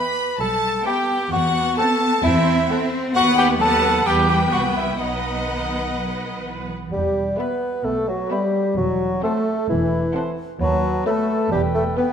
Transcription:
Already playing: viola section B3 B4, cor anglais B4, violin section E5 B5, celesta B5
0.40 double bass section B1, cello section G3, cor anglais A4, violin section A5, celesta A5
0.86 cello section B3, viola section B3 B4, cor anglais G4, violin section E5 G5, celesta G5
1.32 double bass section E2, cor anglais F#4, violin section F#5, celesta F#5
1.78 viola section C4 A4, cor anglais A4, violin section F#5 A5, celesta A5
2.23 double bass section E2, cello section C4, cor anglais E4, celesta E5, violin section E5
2.70 viola section C4 A4, cello section C4, violin section F#5
3.15 double bass section D#2, cello section B3, viola section B3 B4, cor anglais F#4, violin section F#5, celesta F#5
3.38 cor anglais G4, violin section G5, celesta G5
3.60 cello section F#3, viola section B3 B4, cor anglais A4, violin section F#5 A5, celesta A5
4.06 double bass section E2, cello section G3, viola section B3 B4, cor anglais G4, violin section G5, celesta G5
4.29 cor anglais G4, violin section G5, celesta G5
4.52 double bass section C2, cor anglais F#4, violin section F#5, celesta F#5
4.75 cor anglais E4, violin section E5, celesta E5
4.99 double bass section B1, cello section F#3, viola section B3 B4, cor anglais D#4, violin section D#5 F#5, celesta D#5
5.48 cello section D#3
5.96 cello section F#3
6.44 cello section E3
6.92 double bass section E1, cello section E2, french horn section G3, bassoon G3, clarinet G4
7.38 viola section B3, french horn section B3, bassoon B3, clarinet B4, violin section B4 E5, cor anglais B4, flute B5
7.85 double bass section B1, cello section B2, bassoon A3, french horn section A3, clarinet A4
8.08 bassoon F#3, french horn section F#3, clarinet F#4
8.30 french horn section G3, bassoon G3, viola section B3, clarinet G4, violin section B4 E5, cor anglais B4, flute B5
8.77 double bass section E1, cello section E2, bassoon F#3, french horn section F#3, clarinet F#4
9.23 bassoon A3, french horn section A3, viola section C4, violin section A4 F#5, clarinet A4, cor anglais C5, flute A5
9.69 double bass section E1, cello section E2, bassoon E3, french horn section E3, clarinet E4
10.15 viola section C4, violin section A4 F#5, cor anglais C5, flute A5
10.60 double bass section D#2, cello section D#2, french horn section F#3, bassoon F#3, clarinet F#4, cor anglais B4, flute B5
10.64 flute A5
11.06 bassoon A3, french horn section A3, viola section B3, violin section A4 B4, clarinet A4, cor anglais B4, flute B5
11.10 flute A5
11.51 double bass section E1, cello section E2, french horn section G3, bassoon G3, clarinet G4, cor anglais B4, flute A5
11.56 flute G5
11.75 bassoon A3, french horn section A3, clarinet A4
11.97 bassoon B3, viola section B3, french horn section B3, violin section G4 B4, cor anglais B4, clarinet B4, flute G5

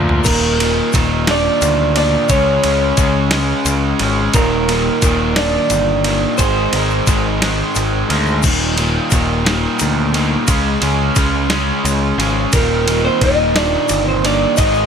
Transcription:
Already playing: picked electric bass D2, overdriven electric guitar A#2 F3 A#3 D4 F4
0.09 floor tom
0.24 picked electric bass D#1, overdriven electric guitar D#2 A#2 D#3, tine electric piano A#3, clean electric guitar A#4, kick, crash, ride, shaker
0.59 overdriven electric guitar D#2 A#2 D#3, ride, shaker
0.93 picked electric bass D#1, overdriven electric guitar D#2 A#2 D#3, kick, ride, shaker
1.27 overdriven electric guitar D#2 A#2 D#3, tine electric piano D4, clean electric guitar D5, snare, ride
1.62 picked electric bass D2, ride, shaker
1.95 overdriven electric guitar D#2 A#2 D#3, tine electric piano D4, clean electric guitar D5, ride
2.29 picked electric bass C#2, overdriven electric guitar C#3 G#3 C#4, tine electric piano C#4, clean electric guitar C#5, kick, ride, shaker
2.63 picked electric bass C#2, overdriven electric guitar C#3 G#3 C#4, ride, shaker
2.97 picked electric bass C#2, overdriven electric guitar C#3 G#3 C#4, kick, ride, shaker
3.31 overdriven electric guitar C#3 G#3 C#4, snare, ride
3.65 picked electric bass C#2, ride, shaker
3.99 picked electric bass G#1, overdriven electric guitar C#3 G#3 C#4, ride
4.34 picked electric bass D#1, overdriven electric guitar D#2 A#2 D#3, tine electric piano A#3, clean electric guitar A#4, kick, ride, shaker
4.68 overdriven electric guitar D#2 A#2 D#3, ride, shaker
5.02 picked electric bass D#1, overdriven electric guitar D#2 A#2 D#3, kick, ride, shaker
5.36 overdriven electric guitar D#2 A#2 D#3, tine electric piano D4, clean electric guitar D5, snare, ride
5.70 picked electric bass G1, ride, shaker
6.04 overdriven electric guitar D#2 A#2 D#3, ride
6.38 picked electric bass G#1, overdriven electric guitar G#2 D#3 G#3, tine electric piano C4, clean electric guitar C5, kick, ride, shaker
6.72 picked electric bass G#1, overdriven electric guitar G#2 D#3 G#3, ride
6.90 shaker
7.07 picked electric bass G#1, overdriven electric guitar G#2 D#3 G#3, kick, ride, shaker
7.41 overdriven electric guitar G#2 D#3 G#3, snare, ride
7.75 picked electric bass G#1, ride, shaker
8.09 picked electric bass D2, overdriven electric guitar G#2 D#3 G#3, ride
8.26 shaker
8.43 picked electric bass D#1, overdriven electric guitar D#2 A#2 D#3, kick, crash, shaker
8.76 overdriven electric guitar D#2 A#2 D#3, ride, shaker
9.11 picked electric bass D#1, overdriven electric guitar D#2 A#2 D#3, kick, ride, shaker
9.44 overdriven electric guitar D#2 A#2 D#3, snare, ride
9.79 picked electric bass D2, ride, shaker
10.13 overdriven electric guitar D#2 A#2 D#3, ride
10.47 picked electric bass C#2, overdriven electric guitar C#3 G#3 C#4, kick, ride, shaker
10.81 picked electric bass C#2, overdriven electric guitar C#3 G#3 C#4, ride, shaker
11.16 picked electric bass C#2, overdriven electric guitar C#3 G#3 C#4, kick, ride, shaker
11.50 overdriven electric guitar C#3 G#3 C#4, snare, ride
11.85 picked electric bass C#2, ride, shaker
12.18 picked electric bass G#1, overdriven electric guitar C#3 G#3 C#4, ride
12.52 picked electric bass D#1, overdriven electric guitar D#2 A#2 D#3, tine electric piano A#3, clean electric guitar A#4, kick, ride, shaker
12.87 overdriven electric guitar D#2 A#2 D#3, ride, shaker
13.05 tine electric piano C4, clean electric guitar C5
13.21 picked electric bass D#1, overdriven electric guitar D#2 A#2 D#3, tine electric piano D#4, clean electric guitar D#5, kick, ride
13.55 overdriven electric guitar D#2 A#2 D#3, tine electric piano D4, clean electric guitar D5, snare, ride
13.89 picked electric bass G1, ride, shaker
14.07 tine electric piano C4, clean electric guitar C5
14.24 overdriven electric guitar D#2 A#2 D#3, tine electric piano D4, clean electric guitar D5, ride
14.57 picked electric bass G#1, overdriven electric guitar G#2 D#3 G#3, tine electric piano D#4, clean electric guitar D#5, kick, ride, shaker
14.74 shaker

